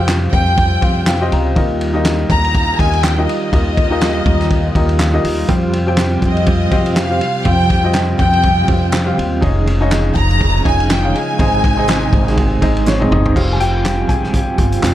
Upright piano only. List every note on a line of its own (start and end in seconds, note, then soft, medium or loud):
0.00 0.81 C4 medium
0.00 0.82 F4 medium
0.00 0.82 G4 medium
0.00 0.83 C5 medium
0.00 0.83 F5 medium
0.81 1.13 C4 medium
0.81 1.13 F4 medium
0.81 1.13 G4 medium
0.81 1.14 C5 medium
0.81 1.05 F5 medium
1.07 1.30 F5 medium
1.20 1.50 C4 medium
1.20 1.50 F4 medium
1.20 1.51 G4 medium
1.20 1.51 C5 medium
1.20 1.51 D#5 medium
1.33 1.55 A#5 medium
1.55 2.26 D#3 medium
1.55 1.87 D#4 medium
1.55 1.87 F4 medium
1.55 1.87 G4 medium
1.55 1.88 A#4 medium
1.55 1.88 D#5 medium
1.93 2.65 D#4 medium
1.93 2.65 F4 medium
1.93 2.65 G4 medium
1.93 2.65 A#4 medium
1.93 2.66 D#5 loud
2.79 3.10 D#4 medium
2.79 3.10 F4 medium
2.79 3.10 G4 medium
2.79 3.11 A#4 medium
2.79 3.11 D#5 medium
3.17 3.47 D#4 medium
3.17 3.47 F4 medium
3.17 3.47 G4 medium
3.17 3.48 A#4 medium
3.17 3.48 D#5 medium
3.52 4.22 D#3 medium
3.52 3.83 D#4 medium
3.52 3.83 F4 medium
3.52 3.84 G4 medium
3.52 3.84 A#4 medium
3.52 3.84 D#5 medium
3.90 4.61 D#4 medium
3.90 4.62 F4 medium
3.90 4.62 G4 medium
3.90 4.62 A#4 medium
3.90 4.62 D#5 loud
4.75 5.06 D#4 medium
4.75 5.07 F4 medium
4.75 5.07 G4 medium
4.75 5.07 A#4 medium
4.75 5.07 D#5 medium
5.13 5.43 D#4 medium
5.13 5.43 F4 medium
5.13 5.44 G4 medium
5.13 5.44 A#4 medium
5.13 5.44 D#5 loud
5.48 5.80 C4 medium
5.48 5.80 F4 medium
5.48 5.80 G4 medium
5.48 5.81 C5 medium
5.48 5.80 F5 medium
5.86 6.58 C4 medium
5.86 6.58 F4 medium
5.86 6.58 G4 medium
5.86 6.58 C5 medium
5.86 6.58 G5 loud
6.71 7.03 C4 medium
6.71 7.03 F4 medium
6.71 7.03 G4 medium
6.71 7.03 C5 medium
6.71 7.04 F5 medium
7.09 7.40 C4 medium
7.09 7.40 F4 medium
7.09 7.40 G4 medium
7.09 7.40 C5 medium
7.09 7.40 F5 medium
7.45 7.77 C4 medium
7.45 7.77 F4 medium
7.45 7.77 G4 medium
7.45 7.77 C5 medium
7.45 7.78 F5 medium
7.83 8.54 C4 medium
7.83 8.55 F4 medium
7.83 8.55 G4 medium
7.83 8.55 C5 medium
7.83 8.55 D#5 medium
8.67 8.99 C4 medium
8.67 8.99 F4 medium
8.67 9.00 G4 medium
8.67 9.00 C5 medium
8.67 9.00 F5 medium
9.05 9.36 C4 medium
9.05 9.36 F4 medium
9.05 9.36 G4 medium
9.05 9.37 C5 medium
9.05 9.37 F5 medium
9.41 9.73 D#4 medium
9.41 9.73 F4 medium
9.41 9.73 G#4 medium
9.41 9.74 C#5 medium
9.41 9.74 D#5 loud
9.80 10.51 D#4 loud
9.80 10.51 F4 medium
9.80 10.52 G#4 medium
9.80 10.52 C#5 medium
9.80 10.52 D#5 loud
10.64 10.96 D#4 medium
10.64 10.96 F4 medium
10.64 10.96 G#4 medium
10.64 10.96 C#5 medium
10.64 10.96 D#5 medium
11.02 11.33 D#4 medium
11.02 11.33 F4 medium
11.02 11.33 G#4 medium
11.02 11.34 C#5 medium
11.02 11.34 F5 medium
11.38 12.09 G#2 medium
11.38 11.70 C4 medium
11.38 11.70 D#4 medium
11.38 11.70 G#4 medium
11.38 11.70 C5 medium
11.38 11.71 D#5 medium
11.77 12.48 C4 medium
11.77 12.48 D#4 medium
11.77 12.48 G#4 medium
11.77 12.49 C5 medium
11.77 12.49 D#5 loud
12.61 12.93 C4 medium
12.61 12.93 D#4 medium
12.61 12.93 G#4 medium
12.61 12.93 C5 medium
12.61 12.94 D#5 loud
12.87 13.10 C#4 medium
12.87 13.12 C#5 loud
12.99 13.30 C4 medium
12.99 13.10 D#4 medium
12.99 13.30 G#4 medium
12.99 13.30 C5 medium
12.99 13.10 D#5 loud
13.11 13.34 D#4 medium
13.11 13.34 D#5 medium
13.35 14.06 G3 soft
13.35 14.06 C4 medium
13.35 14.06 F4 medium
13.35 13.53 F5 medium
13.53 13.60 G#5 medium
13.60 14.07 G4 medium
13.60 14.06 G5 loud
14.09 14.80 G#4 medium
14.09 14.79 G#5 medium
14.82 14.94 F4 medium
14.82 14.94 F5 medium